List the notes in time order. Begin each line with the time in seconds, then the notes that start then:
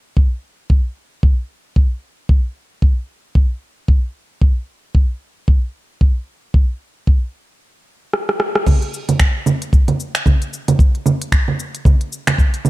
0.17 kick
0.70 kick
1.23 kick
1.76 kick
2.29 kick
2.82 kick
3.35 kick
3.88 kick
4.42 kick
4.95 kick
5.48 kick
6.01 kick
6.54 kick
7.07 kick
8.13 cross-stick
8.29 cross-stick
8.40 cross-stick
8.55 cross-stick
8.66 kick, crash, low conga, shaker
8.82 closed hi-hat
8.94 shaker
9.09 closed hi-hat, low conga, shaker
9.20 finger snap, kick, shaker
9.46 low conga, shaker
9.62 closed hi-hat, shaker
9.73 kick, shaker
9.88 closed hi-hat, low conga
10.00 shaker
10.15 finger snap, closed hi-hat, shaker
10.26 kick, low conga, shaker
10.42 closed hi-hat, shaker
10.53 shaker
10.68 closed hi-hat, low conga, shaker
10.79 kick, shaker
10.95 closed hi-hat
11.06 low conga, shaker
11.22 closed hi-hat, shaker
11.32 finger snap, kick, shaker
11.48 low conga
11.60 shaker
11.75 closed hi-hat, shaker
11.85 kick, low conga, shaker
12.01 closed hi-hat
12.12 shaker
12.27 finger snap, closed hi-hat, low conga, shaker
12.38 kick, shaker
12.54 closed hi-hat, shaker
12.65 low conga, shaker